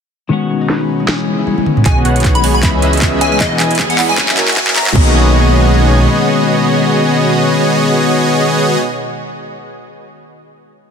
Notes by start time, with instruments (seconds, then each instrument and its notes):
0.29 analog synth pad B2 G#3 C#4 D#4, clean electric guitar D#3 G#3 B3 C#4, harp G#3
0.33 clean electric guitar F#4
0.42 harp F#4
0.50 harp G#3
0.61 harp D#4
0.70 harp B4, snare
0.81 harp G#3
0.89 harp C#4
1.00 harp G#3
1.06 analog synth pad C#3 B3 E4, clean electric guitar E3 G#3 B3 C#4, harp G#3, finger snap, snare
1.10 clean electric guitar G#4
1.19 harp G#4
1.28 harp G#3
1.38 harp E4
1.47 harp C#5, high tom
1.58 harp G#3, high tom
1.66 harp C#4, mid tom
1.77 harp G#3, mid tom
1.84 detuned saw bass B1, clean electric guitar D#3 G#3 B3 C#4, supersaw synth B3 F#4 G#4 C#5 D#5, analog synth pad B3 G#4 C#5 D#5, synth pluck D#5, digital synth lead G#5, kick, clap, closed hi-hat, riser
1.88 clean electric guitar F#4
1.97 harp F#4
2.05 detuned saw bass B1, harp G#3, supersaw synth B3 F#4 G#4 C#5 F#5, synth pluck F#5, closed hi-hat
2.16 harp D#4, closed hi-hat
2.20 closed hi-hat
2.24 detuned saw bass B1, supersaw synth B3 F#4 G#4 C#5 F#5, harp B4, synth pluck F#5, kick, clap, closed hi-hat
2.35 harp G#3, digital synth lead B5, closed hi-hat
2.44 detuned saw bass B1, supersaw synth B3 F#4 G#4 C#5 G#5, harp C#4, synth pluck G#5, open hi-hat
2.54 harp G#3, digital synth lead B5
2.61 detuned saw bass C#2, clean electric guitar E3 G#3 B3 C#4 G#4, analog synth pad C#4 B4 E5, supersaw synth C#4 G#4 B4 D#5 E5, synth pluck E5, digital synth lead B5, kick, clap, closed hi-hat
2.74 harp G#4
2.82 detuned saw bass C#2, harp G#3, supersaw synth C#4 G#4 B4 D#5 E5, synth pluck E5, closed hi-hat
2.93 harp E4, closed hi-hat
2.97 closed hi-hat
3.02 detuned saw bass C#2, supersaw synth C#4 G#4 B4 E5, harp C#5, synth pluck E5, kick, clap, closed hi-hat
3.13 harp G#3
3.21 detuned saw bass C#2, supersaw synth C#4 G#4 B4 D#5 E5, harp C#4, synth pluck E5, digital synth lead G#5, closed hi-hat
3.32 harp G#3, digital synth lead G#5
3.38 detuned saw bass E1, clean electric guitar E3 G#3 B3 D#5, analog synth pad E3 B3 D#5, supersaw synth E3 E4 G#4 F#5, digital synth lead D#5, synth pluck F#5, kick, clap, closed hi-hat
3.43 clean electric guitar G#4
3.51 harp G#4
3.60 detuned saw bass E1, supersaw synth E3 E4 G#4 D#5 G#5, harp G#3, synth pluck G#5, clap, closed hi-hat
3.71 harp E4, closed hi-hat
3.75 closed hi-hat
3.79 detuned saw bass E2, supersaw synth E3 E4 G#4 D#5 G#5, synth pluck G#5, kick, clap, closed hi-hat
3.90 harp G#3, digital synth lead F#5, closed hi-hat
3.99 detuned saw bass E2, supersaw synth E3 E4 G#4 D#5 B5, harp D#4, synth pluck B5, clap, open hi-hat
4.09 harp G#3, digital synth lead G#5
4.16 detuned saw bass F#1, clean electric guitar E3 F#3 A#3 C#4 F#4, supersaw synth F#3 F#4 A#4 E5 G#5, analog synth pad F#3 C#4 A#4 E5, harp A#3, synth pluck G#5, digital synth lead G#5, kick, clap, closed hi-hat
4.29 harp A#4, clap
4.37 detuned saw bass F#1, supersaw synth F#3 F#4 A#4 E5 G#5, harp A#3, synth pluck G#5, clap, closed hi-hat
4.48 harp F#4, clap, closed hi-hat
4.52 closed hi-hat
4.57 detuned saw bass F#1, supersaw synth F#3 F#4 A#4 G#5, harp E5, synth pluck G#5, kick, clap, closed hi-hat
4.67 harp A#3, clap
4.76 detuned saw bass F#2, supersaw synth F#3 F#4 A#4 E5 A#5, harp E4, synth pluck A#5, clap, closed hi-hat
4.87 harp A#3, clap
4.92 detuned saw bass B1, analog synth pad B2 G#3 C#5 D#5, clean electric guitar D#3 G#3 B3, harp G#3, supersaw synth B3 F#4 G#4 C#5 D#5, synth pluck D#5, kick, crash
4.97 clean electric guitar C#4 F#4